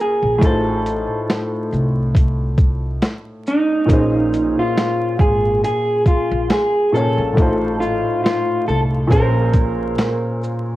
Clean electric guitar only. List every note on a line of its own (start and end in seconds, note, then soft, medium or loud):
0.01 0.37 G#4 medium
0.38 0.43 G#4 medium
0.45 3.00 A4 medium
3.48 4.61 D#4 medium
4.59 5.20 F4 medium
5.20 5.63 G#4 medium
5.64 6.07 G#4 medium
6.07 6.51 F4 medium
6.51 6.91 G#4 medium
6.94 7.80 A4 medium
7.80 8.23 F4 loud
8.24 8.67 F4 medium
8.68 8.80 A4 loud
9.12 10.38 A#4 medium